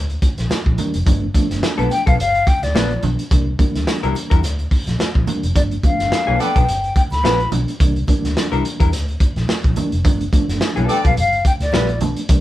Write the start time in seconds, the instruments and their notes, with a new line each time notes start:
Already playing: fingered electric bass D2
0.10 closed hi-hat
0.22 kick, closed hi-hat, muted conga, high conga
0.38 fingered electric bass A#1, snare, closed hi-hat
0.50 muted fingered electric bass stroke, snare, high conga
0.66 fingered electric bass A#1, kick
0.78 reed electric piano E3 G3 A#3 D4, closed hi-hat, muted conga, high conga, low conga
0.94 fingered electric bass F1, closed hi-hat
1.06 fingered electric bass G1, reed electric piano F3 A3 B3 D4, kick, closed hi-hat, muted conga, low conga
1.35 reed electric piano F3 A3 B3 D4, kick, closed hi-hat, muted conga, high conga
1.51 fingered electric bass G1, snare, closed hi-hat
1.63 snare, muted conga
1.78 fingered electric bass B1, hollow-body jazz guitar F3 B3 D4 A4, closed hi-hat
1.91 flute G5, closed hi-hat
2.06 fingered electric bass B1, hollow-body jazz guitar F3 B3 D4 A4, flute F5, kick, closed hi-hat
2.19 fingered electric bass G1, flute F5, closed hi-hat
2.35 closed hi-hat
2.47 flute G5, kick, closed hi-hat, high conga
2.63 fingered electric bass D2, flute D5, snare, closed hi-hat
2.75 fingered electric bass A#1, hollow-body jazz guitar F3 B3 D4 B4, snare, muted conga, high conga
2.91 closed hi-hat
3.03 fingered electric bass B1, reed electric piano F3 A3 B3 D4, closed hi-hat, high conga, low conga
3.19 closed hi-hat
3.31 fingered electric bass C2, reed electric piano E3 G3 A#3 D4, kick, closed hi-hat, muted conga, low conga
3.59 reed electric piano E3 G3 A#3 D4, kick, closed hi-hat, high conga
3.75 fingered electric bass D2, snare, closed hi-hat
3.87 snare, muted conga
4.03 fingered electric bass C2, hollow-body jazz guitar G3 D4 E4 A#4, closed hi-hat
4.15 closed hi-hat, muted conga
4.30 fingered electric bass E2, hollow-body jazz guitar G3 D4 E4 A#4, kick, closed hi-hat
4.43 fingered electric bass D2, snare, closed hi-hat, muted conga
4.59 closed hi-hat
4.71 kick, open hi-hat, high conga
4.87 fingered electric bass A#1, snare, closed hi-hat
4.99 snare, high conga
5.15 fingered electric bass A#1, kick
5.27 reed electric piano E3 G3 A#3 D4, closed hi-hat, high conga, low conga
5.43 fingered electric bass F1, closed hi-hat
5.55 fingered electric bass G1, reed electric piano F3 A3 B3 D4, flute D5, kick, closed hi-hat, low conga
5.71 closed hi-hat
5.83 reed electric piano F3 A3 B3 D4, flute F5, kick, closed hi-hat, muted conga, high conga
6.00 fingered electric bass G1, snare, closed hi-hat
6.12 snare, muted conga
6.27 fingered electric bass B1, hollow-body jazz guitar F3 B3 D4 A4
6.39 horn section B3 A4 D5, flute G5, closed hi-hat, muted conga
6.56 fingered electric bass B1, hollow-body jazz guitar F3 B3 D4 A4, kick, closed hi-hat
6.68 fingered electric bass G1, closed hi-hat
6.84 closed hi-hat
6.96 flute G5, kick, closed hi-hat, muted conga, high conga
7.12 fingered electric bass D2, flute B5, snare, closed hi-hat
7.23 fingered electric bass A#1, hollow-body jazz guitar F3 B3 D4 B4, snare, muted conga, high conga
7.40 closed hi-hat
7.52 fingered electric bass B1, reed electric piano F3 A3 B3 D4, closed hi-hat, muted conga, high conga, low conga
7.68 closed hi-hat
7.80 fingered electric bass C2, reed electric piano E3 G3 A#3 D4, kick, closed hi-hat, low conga
7.96 closed hi-hat
8.08 reed electric piano E3 G3 A#3 D4, kick, closed hi-hat, muted conga, high conga
8.24 fingered electric bass D2, snare, closed hi-hat
8.37 snare
8.52 fingered electric bass C2, hollow-body jazz guitar G3 D4 E4 A#4, closed hi-hat
8.65 closed hi-hat
8.80 fingered electric bass E2, hollow-body jazz guitar G3 D4 E4 A#4, kick, closed hi-hat
8.92 fingered electric bass D2, snare, closed hi-hat, muted conga
9.08 closed hi-hat
9.20 kick, closed hi-hat, muted conga, high conga
9.36 fingered electric bass A#1, snare, closed hi-hat
9.48 snare, high conga
9.64 fingered electric bass A#1, kick, closed hi-hat
9.76 reed electric piano E3 G3 A#3 D4, closed hi-hat, muted conga, high conga, low conga
9.92 fingered electric bass F1, closed hi-hat
10.05 fingered electric bass G1, reed electric piano F3 A3 B3 D4, kick, closed hi-hat, low conga
10.21 closed hi-hat
10.33 reed electric piano F3 A3 B3 D4, kick, closed hi-hat, muted conga, high conga
10.49 fingered electric bass G1, snare, closed hi-hat
10.61 snare, muted conga
10.76 fingered electric bass B1, hollow-body jazz guitar G3 B3 F4 A4, closed hi-hat
10.88 horn section B3 A4 D5, flute G5, closed hi-hat
11.04 fingered electric bass B1, hollow-body jazz guitar G3 B3 F4 A4, flute F5, kick, closed hi-hat
11.17 fingered electric bass G1, flute F5, closed hi-hat, muted conga
11.32 closed hi-hat
11.45 flute G5, kick, closed hi-hat, muted conga, high conga
11.60 fingered electric bass D2, flute D5, snare, closed hi-hat
11.72 fingered electric bass A#1, hollow-body jazz guitar G3 B3 F4 B4, snare, muted conga, high conga
11.89 closed hi-hat
12.01 fingered electric bass B1, reed electric piano F3 A3 B3 D4, closed hi-hat, high conga, low conga
12.16 closed hi-hat
12.29 fingered electric bass C2, reed electric piano E3 G3 A#3 D4, kick, closed hi-hat, low conga